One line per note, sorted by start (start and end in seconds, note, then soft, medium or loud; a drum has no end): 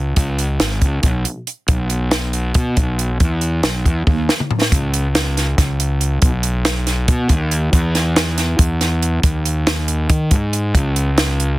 0.00 0.14 C#2 medium
0.16 0.58 C#2 medium
0.16 kick loud
0.16 closed hi-hat medium
0.39 closed hi-hat medium
0.60 0.81 G#1 medium
0.60 snare loud
0.60 closed hi-hat medium
0.82 1.02 C#2 medium
0.82 kick medium
0.82 closed hi-hat medium
1.03 1.24 B1 medium
1.03 kick medium
1.03 closed hi-hat medium
1.25 closed hi-hat medium
1.47 closed hi-hat medium
1.68 2.51 B1 medium
1.68 kick loud
1.68 closed hi-hat medium
1.90 closed hi-hat medium
2.11 snare medium
2.11 closed hi-hat medium
2.33 closed hi-hat medium
2.54 2.75 B2 medium
2.54 kick loud
2.54 closed hi-hat medium
2.77 3.18 B1 medium
2.77 kick medium
2.77 closed hi-hat medium
2.99 closed hi-hat medium
3.20 3.61 E2 medium
3.20 kick loud
3.20 closed hi-hat medium
3.41 closed hi-hat medium
3.63 3.84 B1 medium
3.63 snare medium
3.63 closed hi-hat medium
3.85 4.06 E2 medium
3.85 kick medium
3.85 closed hi-hat medium
4.07 4.27 D#2 medium
4.07 kick loud
4.07 high tom medium
4.29 snare medium
4.40 mid tom medium
4.51 floor tom medium
4.62 snare medium
4.72 5.54 C#2 medium
4.72 kick loud
4.72 closed hi-hat medium
4.94 closed hi-hat medium
5.15 snare medium
5.15 closed hi-hat medium
5.37 snare soft
5.37 closed hi-hat medium
5.58 6.19 C#2 medium
5.58 kick loud
5.58 snare soft
5.58 closed hi-hat medium
5.80 closed hi-hat medium
6.01 closed hi-hat medium
6.22 7.05 B1 medium
6.22 kick loud
6.22 closed hi-hat medium
6.43 closed hi-hat medium
6.65 snare loud
6.65 closed hi-hat medium
6.87 snare soft
6.87 closed hi-hat medium
7.08 7.29 B2 medium
7.08 kick loud
7.08 closed hi-hat medium
7.29 7.70 D#2 medium
7.29 kick medium
7.29 closed hi-hat medium
7.51 closed hi-hat medium
7.73 8.56 E2 loud
7.73 kick medium
7.73 closed hi-hat medium
7.95 snare soft
7.95 closed hi-hat medium
8.16 snare medium
8.16 closed hi-hat medium
8.38 snare soft
8.38 closed hi-hat medium
8.59 9.20 E2 medium
8.59 kick medium
8.59 closed hi-hat loud
8.81 snare soft
8.81 closed hi-hat medium
9.02 closed hi-hat medium
9.23 10.06 D#2 medium
9.23 kick loud
9.23 closed hi-hat medium
9.46 closed hi-hat medium
9.67 snare loud
9.67 closed hi-hat medium
9.88 closed hi-hat medium
10.10 10.30 D#3 medium
10.10 kick loud
10.10 closed hi-hat medium
10.31 10.72 G#2 medium
10.31 kick medium
10.31 closed hi-hat medium
10.53 closed hi-hat medium
10.75 11.57 C#2 medium
10.75 kick medium
10.75 closed hi-hat medium
10.96 closed hi-hat medium
11.18 snare medium
11.18 closed hi-hat medium
11.40 closed hi-hat medium